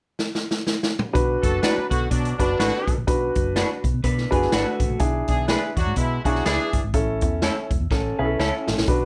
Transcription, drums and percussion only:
0.19 snare
0.35 snare
0.51 snare
0.67 snare
0.83 snare
0.99 mid tom
1.15 kick, closed hi-hat
1.43 kick, closed hi-hat
1.63 snare, closed hi-hat
1.91 kick, closed hi-hat
2.11 kick, closed hi-hat
2.25 closed hi-hat
2.40 kick, closed hi-hat
2.60 snare, closed hi-hat
2.88 kick, closed hi-hat
3.08 kick, closed hi-hat
3.35 kick, closed hi-hat
3.56 snare, closed hi-hat
3.84 kick, closed hi-hat
4.04 kick, closed hi-hat
4.18 snare
4.32 kick, closed hi-hat
4.42 snare
4.52 snare, closed hi-hat
4.80 kick, closed hi-hat
4.99 kick, closed hi-hat
5.28 kick, closed hi-hat
5.48 snare, closed hi-hat
5.77 kick, closed hi-hat
5.96 kick, closed hi-hat
6.25 kick, closed hi-hat
6.35 snare
6.46 snare, closed hi-hat
6.73 kick, closed hi-hat
6.94 kick, closed hi-hat
7.21 kick, closed hi-hat
7.42 snare, closed hi-hat
7.71 kick, closed hi-hat
7.91 kick, snare
8.39 snare
8.68 snare
8.78 snare
8.88 kick, closed hi-hat

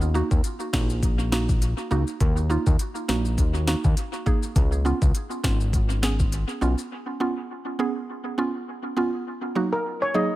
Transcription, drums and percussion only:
0.01 maracas
0.15 maracas
0.31 kick, maracas
0.44 closed hi-hat, maracas
0.60 maracas
0.73 kick, snare, maracas
0.90 maracas
1.02 kick, closed hi-hat, maracas
1.19 maracas
1.32 snare
1.49 kick, maracas
1.62 closed hi-hat, maracas
1.78 maracas
1.91 maracas
2.07 maracas
2.20 kick, closed hi-hat, maracas
2.37 maracas
2.50 maracas
2.66 kick, maracas
2.79 closed hi-hat, maracas
2.95 maracas
3.09 snare, maracas
3.25 maracas
3.38 kick, closed hi-hat, maracas
3.55 maracas
3.68 snare
3.84 kick, maracas
3.97 closed hi-hat, maracas
4.13 maracas
4.26 kick, maracas
4.43 maracas
4.56 kick, closed hi-hat, maracas
4.72 maracas
4.86 maracas
5.02 kick, maracas
5.15 closed hi-hat, maracas
5.31 maracas
5.44 kick, snare, maracas
5.61 maracas
5.73 kick, closed hi-hat, maracas
5.90 maracas
6.03 snare
6.19 kick, maracas
6.32 closed hi-hat, maracas
6.49 maracas
6.62 maracas
6.78 maracas

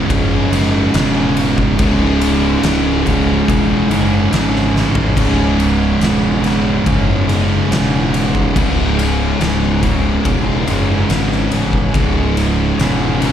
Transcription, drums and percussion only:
0.10 kick, ride
0.53 ride
0.94 snare, ride
1.37 ride
1.58 kick
1.79 kick, ride
2.21 ride
2.63 snare, ride
3.06 kick, ride
3.48 kick, ride
3.91 ride
4.33 snare, ride
4.56 snare
4.76 snare
4.95 floor tom
5.17 kick, ride, crash
5.60 ride
6.01 snare, ride
6.44 snare, ride
6.86 kick, ride
7.29 ride
7.72 snare, ride
8.14 ride
8.35 kick
8.56 kick, ride
8.99 ride
9.41 snare, ride
9.83 kick, ride
10.25 kick, ride
10.68 ride
11.10 snare, ride
11.32 snare
11.52 ride
11.73 kick
11.94 kick, ride
12.37 ride
12.79 snare, ride
13.22 snare, ride

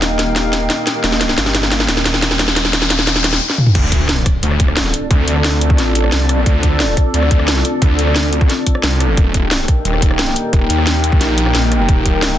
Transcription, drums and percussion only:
0.02 snare, closed hi-hat
0.19 snare, closed hi-hat
0.36 snare, closed hi-hat
0.53 snare, closed hi-hat
0.70 snare, closed hi-hat
0.87 snare, closed hi-hat
1.04 snare, closed hi-hat
1.12 snare
1.21 snare, closed hi-hat
1.29 snare
1.38 snare, closed hi-hat
1.46 snare
1.55 snare, closed hi-hat
1.63 snare
1.72 snare, closed hi-hat
1.80 snare
1.89 snare, closed hi-hat
1.97 snare
2.06 snare, closed hi-hat
2.14 snare
2.22 snare, closed hi-hat
2.31 snare
2.39 snare, closed hi-hat
2.48 snare
2.56 snare, closed hi-hat
2.65 snare
2.73 snare, closed hi-hat
2.82 snare
2.90 snare, closed hi-hat
2.99 snare
3.07 snare, closed hi-hat
3.16 snare
3.24 snare, closed hi-hat
3.33 snare
3.50 snare
3.58 mid tom
3.67 mid tom
3.75 kick, closed hi-hat, crash
3.92 kick, closed hi-hat
4.09 snare, closed hi-hat
4.26 kick, cross-stick, closed hi-hat
4.43 closed hi-hat
4.51 cross-stick
4.60 kick, closed hi-hat
4.68 cross-stick
4.77 snare, closed hi-hat
4.85 snare
4.94 closed hi-hat
5.11 kick, closed hi-hat
5.28 closed hi-hat
5.36 cross-stick
5.45 snare, closed hi-hat
5.61 closed hi-hat
5.70 kick
5.78 snare, closed hi-hat
5.95 closed hi-hat
6.04 cross-stick
6.12 snare, closed hi-hat
6.29 cross-stick, closed hi-hat
6.46 kick, closed hi-hat
6.63 kick, closed hi-hat
6.80 snare, closed hi-hat
6.97 kick, cross-stick, closed hi-hat
7.14 closed hi-hat
7.22 cross-stick
7.31 kick, closed hi-hat
7.39 cross-stick
7.48 snare, closed hi-hat
7.56 snare
7.65 closed hi-hat
7.82 kick, closed hi-hat
7.99 closed hi-hat
8.07 cross-stick
8.16 snare, closed hi-hat
8.33 closed hi-hat
8.41 kick
8.50 snare, closed hi-hat
8.67 kick, closed hi-hat
8.75 cross-stick
8.84 snare, closed hi-hat
9.00 cross-stick, closed hi-hat
9.17 kick, closed hi-hat
9.34 kick, closed hi-hat
9.51 snare, closed hi-hat
9.68 kick, cross-stick, closed hi-hat
9.85 closed hi-hat
9.94 cross-stick
10.02 kick, closed hi-hat
10.11 cross-stick
10.19 snare, closed hi-hat
10.28 snare
10.36 closed hi-hat
10.53 kick, closed hi-hat
10.70 closed hi-hat
10.78 cross-stick
10.87 snare, closed hi-hat
11.04 closed hi-hat
11.12 kick
11.21 snare, closed hi-hat
11.38 closed hi-hat
11.46 cross-stick
11.55 snare, closed hi-hat
11.72 cross-stick, closed hi-hat
11.89 kick, closed hi-hat
12.06 kick, closed hi-hat
12.22 snare, closed hi-hat

